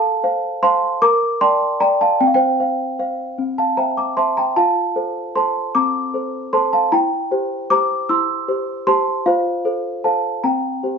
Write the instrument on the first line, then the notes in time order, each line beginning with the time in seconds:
celesta
Already playing: A4 F5 A5
0.24 C5 F5
0.63 C5 F5 A5 C6
1.02 A#4 A#5 D6
1.41 D5 G5 A5 C6
1.80 D5 G5 A#5
2.01 F5 A5
2.21 C4 G5
2.27 F5
2.34 C5 G5
2.60 C5 F5
2.99 C5 F5
3.38 C4
3.58 F5 A5
3.77 C5 E5 G5 A#5
3.97 A#5 D6
4.17 C5 E5 A5 C6
4.37 G5 A#5
4.56 F4 F5 A5
4.96 A4 C5
5.36 A4 C5 A5 C6
5.75 C4 A#5 D6
6.14 A4 C5
6.53 A4 C5 A5 C6
6.73 F5 A5
6.92 E4 G5 A#5
7.31 G4 C5
7.70 G4 C5 A#5 D6
8.09 E4 C6 E6
8.48 G4 C5
8.87 G4 C5 A5 C6
9.26 F4 C5 F5
9.65 A4 C5
10.04 A4 C5 F5 A5
10.44 C4 G5 A#5
10.83 G4 C5